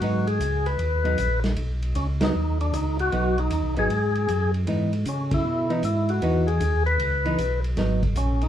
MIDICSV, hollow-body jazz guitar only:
0, 0, Header, 1, 2, 480
1, 0, Start_track
1, 0, Key_signature, 5, "minor"
1, 0, Tempo, 388098
1, 11, Time_signature, 4, 2, 24, 8
1, 10492, End_track
2, 0, Start_track
2, 0, Title_t, "Hollow-body jazz guitar"
2, 0, Program_c, 0, 26
2, 19, Note_on_c, 0, 54, 51
2, 32, Note_on_c, 0, 59, 48
2, 43, Note_on_c, 0, 63, 52
2, 303, Note_off_c, 0, 54, 0
2, 309, Note_off_c, 0, 59, 0
2, 314, Note_off_c, 0, 63, 0
2, 1290, Note_on_c, 0, 59, 49
2, 1293, Note_on_c, 0, 54, 44
2, 1303, Note_on_c, 0, 63, 55
2, 1437, Note_off_c, 0, 59, 0
2, 1438, Note_off_c, 0, 54, 0
2, 1443, Note_off_c, 0, 63, 0
2, 2728, Note_on_c, 0, 54, 62
2, 2740, Note_on_c, 0, 59, 58
2, 2745, Note_on_c, 0, 63, 64
2, 2876, Note_off_c, 0, 54, 0
2, 2882, Note_off_c, 0, 59, 0
2, 2885, Note_off_c, 0, 63, 0
2, 3858, Note_on_c, 0, 54, 49
2, 3865, Note_on_c, 0, 59, 49
2, 3874, Note_on_c, 0, 63, 52
2, 4144, Note_off_c, 0, 54, 0
2, 4147, Note_off_c, 0, 59, 0
2, 4152, Note_off_c, 0, 63, 0
2, 4663, Note_on_c, 0, 59, 48
2, 4664, Note_on_c, 0, 54, 47
2, 4670, Note_on_c, 0, 63, 59
2, 4804, Note_off_c, 0, 59, 0
2, 4805, Note_off_c, 0, 54, 0
2, 4808, Note_off_c, 0, 63, 0
2, 5774, Note_on_c, 0, 52, 53
2, 5783, Note_on_c, 0, 59, 56
2, 5789, Note_on_c, 0, 63, 56
2, 6062, Note_off_c, 0, 52, 0
2, 6066, Note_off_c, 0, 59, 0
2, 6069, Note_off_c, 0, 63, 0
2, 7038, Note_on_c, 0, 52, 52
2, 7049, Note_on_c, 0, 59, 59
2, 7054, Note_on_c, 0, 63, 57
2, 7192, Note_off_c, 0, 52, 0
2, 7197, Note_off_c, 0, 59, 0
2, 7200, Note_off_c, 0, 63, 0
2, 7696, Note_on_c, 0, 52, 62
2, 7700, Note_on_c, 0, 59, 58
2, 7712, Note_on_c, 0, 63, 66
2, 7982, Note_off_c, 0, 52, 0
2, 7985, Note_off_c, 0, 59, 0
2, 7990, Note_off_c, 0, 63, 0
2, 8968, Note_on_c, 0, 52, 53
2, 8979, Note_on_c, 0, 63, 66
2, 8982, Note_on_c, 0, 59, 58
2, 9116, Note_off_c, 0, 52, 0
2, 9122, Note_off_c, 0, 63, 0
2, 9123, Note_off_c, 0, 59, 0
2, 9609, Note_on_c, 0, 54, 51
2, 9623, Note_on_c, 0, 59, 60
2, 9628, Note_on_c, 0, 63, 60
2, 9898, Note_off_c, 0, 54, 0
2, 9905, Note_off_c, 0, 59, 0
2, 9907, Note_off_c, 0, 63, 0
2, 10492, End_track
0, 0, End_of_file